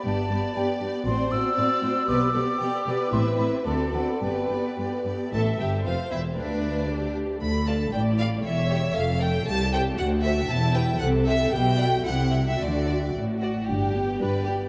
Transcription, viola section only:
\new Staff \with { instrumentName = "Viola section" } { \time 2/4 \key g \major \tempo 4 = 116 <b g'>8 <b g'>8 <b g'>8 <b g'>8 | <c' fis'>8 <c' fis'>8 <c' fis'>8 <c' fis'>8 | <b g'>8 <b g'>8 <b g'>8 <b g'>8 | <c' e'>8 <c' e'>8 <c' fis'>8 <c' fis'>8 |
<b g'>8 <b g'>8 <b g'>8 <b g'>8 | \key c \major e''4 c''4 | b'4 g'4 | a'4 d''4 |
cis''4 a'4 | \key g \major g'4 fis'4 | e'4 a'4 | g'8 fis'8 e'4 |
fis'4. r8 | <g d'>8 <b g'>8 <g d'>8 <b g'>8 | }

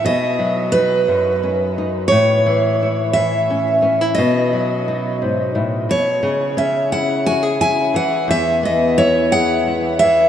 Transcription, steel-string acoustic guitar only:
\new Staff \with { instrumentName = "Steel-string acoustic guitar" } { \time 6/8 \key b \mixolydian \tempo 4. = 58 dis''4 b'2 | cis''4. e''4. | dis''2~ dis''8 cis''8~ | cis''8 e''8 fis''8 gis''8 gis''8 fis''8 |
e''8 dis''8 cis''8 fis''4 e''8 | }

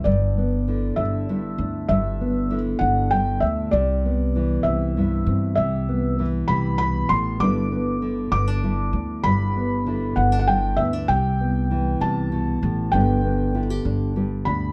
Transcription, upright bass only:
\new Staff \with { instrumentName = "Upright bass" } { \clef bass \time 6/8 \key g \major \tempo 4. = 65 g,,4. g,,4 d,8 | g,,4. g,,4 d,8 | c,4. c,4 g,8 | c,4. c,4 a,,8 |
g,,4. g,,4 d,8 | g,,4. g,,4 d,8 | c,4. c,4 a,,8 | g,,4. g,,4 d,8 | }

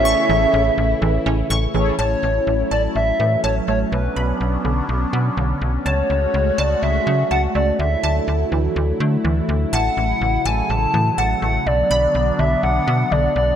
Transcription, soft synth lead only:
\new Staff \with { instrumentName = "Soft synth lead" } { \time 4/4 \key a \major \tempo 4 = 124 e''2. r4 | cis''4. d''8 e''4 cis''8 cis''8 | b'4 r2. | cis''4. d''8 e''4 fis''8 d''8 |
e''4 r2. | fis''4. gis''8 a''4 fis''8 fis''8 | d''4. e''8 fis''4 d''8 d''8 | }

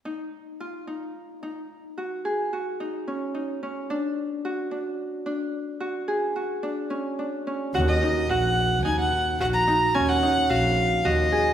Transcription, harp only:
\new Staff \with { instrumentName = "Harp" } { \time 7/4 \key ees \minor \tempo 4 = 109 ees'4 f'8 ees'4 ees'4 ges'8 aes'8 ges'8 ees'8 des'8 ees'8 des'8 | d'4 fis'8 d'4 d'4 fis'8 gis'8 fis'8 d'8 cis'8 d'8 cis'8 | ges'8 ees'8 ges'4 ees'4 ges'8 ees'8 des'8 ees'8 ges'4 ges'8 aes'8 | }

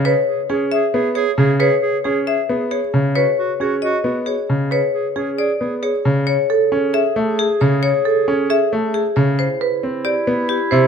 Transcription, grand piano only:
\new Staff \with { instrumentName = "Grand piano" } { \time 7/8 \key e \major \tempo 4 = 135 r4 cis'8 r8 b8 r8 cis8 | r4 cis'8 r8 b8 r8 cis8 | r4 cis'8 r8 b8 r8 cis8 | r4 cis'8 r8 b8 r8 cis8 |
\key a \major r4 cis'8 r8 a8 r8 cis8 | r4 cis'8 r8 a8 r8 cis8 | r4 c'8 r8 b8 r8 c8 | }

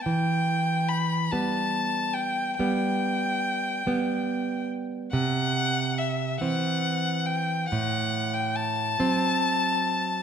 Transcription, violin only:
\new Staff \with { instrumentName = "Violin" } { \time 12/8 \key e \minor \tempo 4. = 47 g''4 b''8 a''4 g''8 g''2~ g''8 r8 | fis''4 e''8 fis''4 g''8 fis''8. g''16 a''2 | }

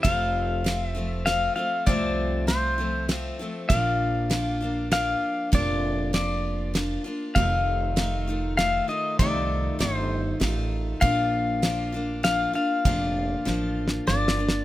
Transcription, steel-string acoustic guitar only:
\new Staff \with { instrumentName = "Steel-string acoustic guitar" } { \time 3/4 \key f \major \tempo 4 = 98 <f, c f a c' f'>4 <f a c' f'>8 <f a c' f'>8 <f a c' f'>8 <f a c' f'>8 | <f, c f a c' f'>4 <f a c' f'>8 <f a c' f'>8 <f a c' f'>8 <f a c' f'>8 | <bes, f bes d' f'>4 <f bes d' f'>8 <bes d' f'>8 <f bes d' f'>4 | <bes, f bes d' f'>4 <f bes d' f'>4 <f bes d' f'>8 <bes d' f'>8 |
<f, c ees a ees' f'>4 <ees a ees' f'>8 <ees a ees' f'>8 <ees a ees' f'>8 <ees a ees' f'>8 | <f, c ees a ees' f'>4 <ees a ees' f'>4 <ees a ees' f'>4 | <bes, f bes d' f'>4 <f bes d' f'>8 <bes d' f'>8 <f bes d' f'>8 <bes d' f'>8 | <bes, f bes d' f'>4 <f bes d' f'>4 <f bes d' f'>8 <bes d' f'>8 | }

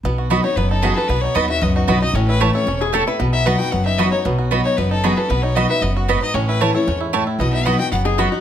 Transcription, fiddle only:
\new Staff \with { instrumentName = "Fiddle" } { \time 4/4 \key b \mixolydian \tempo 4 = 228 r4. cis''8 b'8 a'8 gis'8 a'8 | b'8 cis''8 dis''8 e''8 dis''8 fis'8 b'8 dis''8 | cis''8 b'8 cis''8 cis''4 r4. | r8 e''8 fis''8 g''8 fis''8 e''8 dis''8 cis''8 |
r4. cis''8 b'8 a'8 gis'8 a'8 | b'8 cis''8 dis''8 e''8 dis''8 fis'8 b'8 dis''8 | cis''8 b'8 cis''8 cis''4 r4. | dis''8 e''8 fis''8 g''8 fis''8 r4. | }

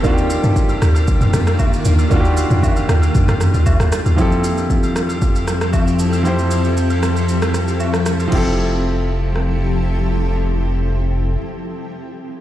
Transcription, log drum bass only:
\new Staff \with { instrumentName = "Log drum bass" } { \clef bass \time 4/4 \key f \major \tempo 4 = 116 ees,8. g,8. ees,4 f,4 ees,8 | ees,8. f,8. ees,8 f,8. ees,16 d,16 ees,16 r16 ees,16 | r1 | r1 |
r1 | r1 | }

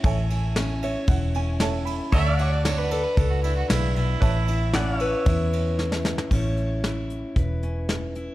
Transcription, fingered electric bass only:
\new Staff \with { instrumentName = "Fingered electric bass" } { \clef bass \time 4/4 \key a \major \tempo 4 = 115 a,,2 e,,2 | d,2 cis,4 b,,4 | a,,2 e,2 | a,,2 e,,2 | }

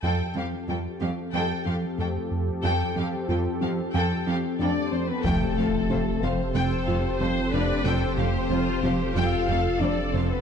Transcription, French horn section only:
\new Staff \with { instrumentName = "French horn section" } { \time 4/4 \key f \lydian \tempo 4 = 92 r1 | r2. d'8 c'16 b16 | a4. c'8 c'4. d'8 | c'2 f'4 d'8 c'16 b16 | }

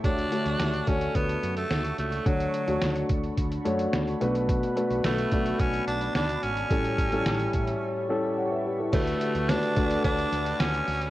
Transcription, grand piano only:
<<
  \new Staff \with { instrumentName = "Grand piano" } { \time 4/4 \key d \major \tempo 4 = 108 << { r1 | r1 | r1 | r2. <cis'' fis''>16 <b' e''>16 <g' cis''>16 <e' a'>16~ |
<e' a'>16 r2. r8. | } \\ { <a d' fis' cis''>16 r16 <a d' fis' cis''>8. r16 <a d' fis' cis''>4. r4 | <a d' fis' cis''>8 r16 <a d' fis' cis''>4~ <a d' fis' cis''>16 r8 <a d' fis' cis''>4 <a d' fis' b'>8~ | <a d' fis' b'>16 r16 <a d' fis' b'>8. r16 <a d' fis' d''>4. r4 | <g cis' e' a'>8 r16 <g cis' e' a'>4~ <g cis' e' a'>16 r8 <g cis' e' a'>4 r8 |
<a d' fis' b'>8. r16 <a d' fis' b'>16 r16 <a d' fis' b'>4. r4 | } >> }
  \new Staff \with { instrumentName = "Grand piano" } { \clef bass \time 4/4 \key d \major d4. r2 r8 | d4. r2 b,8~ | b,4 r2. | a,4. r2 r8 |
d4. r2 r8 | }
>>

